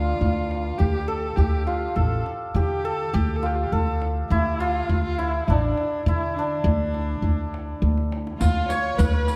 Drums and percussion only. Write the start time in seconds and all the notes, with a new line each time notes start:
0.21 tombak dum
0.51 tombak tek
0.79 tombak dum
1.08 tombak ka
1.37 tombak dum
1.68 tombak tek
1.97 tombak dum
2.26 tombak tek
2.56 tombak dum
3.13 tombak dum
3.43 tombak tek
3.73 tombak dum
4.02 tombak tek
4.31 tombak dum
4.89 tombak dum
5.19 tombak tek
5.48 tombak dum
5.77 tombak tek
6.06 tombak dum
6.65 tombak dum
6.94 tombak tek
7.24 tombak dum
7.54 tombak tek
7.83 tombak tek
7.97 tombak ka
8.12 tombak tek
8.27 tombak ka
8.41 riq, tombak dum
8.70 riq, tombak tek
8.99 riq, tombak dum
9.27 riq, tombak tek